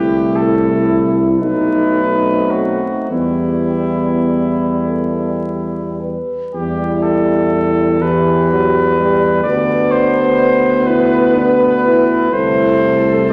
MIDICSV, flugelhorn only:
0, 0, Header, 1, 2, 480
1, 0, Start_track
1, 0, Key_signature, 1, "minor"
1, 0, Tempo, 991736
1, 423, Tempo, 1065719
1, 903, Tempo, 1176471
1, 1378, Time_signature, 6, 3, 24, 8
1, 1863, Tempo, 1119403
1, 2823, Tempo, 985222
1, 3783, Tempo, 937500
1, 4743, Tempo, 974026
1, 6198, End_track
2, 0, Start_track
2, 0, Title_t, "Flugelhorn"
2, 0, Program_c, 0, 56
2, 0, Note_on_c, 0, 67, 105
2, 175, Note_on_c, 0, 69, 89
2, 182, Note_off_c, 0, 67, 0
2, 523, Note_off_c, 0, 69, 0
2, 646, Note_on_c, 0, 71, 97
2, 1135, Note_on_c, 0, 66, 80
2, 1141, Note_off_c, 0, 71, 0
2, 1378, Note_off_c, 0, 66, 0
2, 1381, Note_on_c, 0, 64, 80
2, 2580, Note_off_c, 0, 64, 0
2, 2829, Note_on_c, 0, 67, 91
2, 3063, Note_on_c, 0, 69, 102
2, 3071, Note_off_c, 0, 67, 0
2, 3548, Note_on_c, 0, 71, 109
2, 3555, Note_off_c, 0, 69, 0
2, 4258, Note_off_c, 0, 71, 0
2, 4261, Note_on_c, 0, 74, 118
2, 4504, Note_on_c, 0, 72, 119
2, 4512, Note_off_c, 0, 74, 0
2, 4986, Note_on_c, 0, 71, 109
2, 4994, Note_off_c, 0, 72, 0
2, 5704, Note_on_c, 0, 72, 125
2, 5711, Note_off_c, 0, 71, 0
2, 6183, Note_off_c, 0, 72, 0
2, 6198, End_track
0, 0, End_of_file